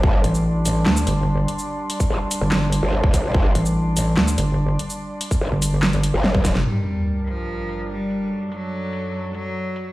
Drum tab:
CC |----------------|----------------|----------------|----------------|
HH |--x---x---x---x-|--x---x---x---x-|--x---x---x---x-|--x---x--xx---x-|
SH |---x--x--x-----x|---x--x-------x-|---x--x--x-----x|---x--x-------x-|
CP |--------x-------|--------x-------|--------x-------|--------x-------|
SD |--------o-------|--------o-------|--------o-------|--------o---o-oo|
T1 |----------------|----------------|----------------|------------oo--|
BD |o---------------|---o---------oo-|o---------------|---o---------oo-|

CC |x---------------|----------------|
HH |--x---x---x---x-|--x---x---x---x-|
SH |----------------|----------------|
CP |----------------|----------------|
SD |----------------|----------------|
T1 |----------------|----------------|
BD |----------------|----------------|